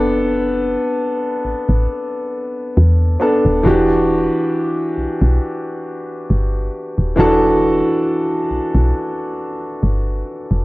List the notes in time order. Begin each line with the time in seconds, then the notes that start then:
Already playing: F#1 B3 D4 A4
1.45 A1
1.69 A1
2.77 E2
3.20 B3 D4 A4
3.45 D#1
3.63 E1 E3 D4 F#4
3.67 G4
4.98 B1
5.22 B1
6.30 G1
6.98 D#1
7.16 E1 E3 D4 F#4 A4
8.51 B1
8.75 B1
9.83 G1
10.51 F1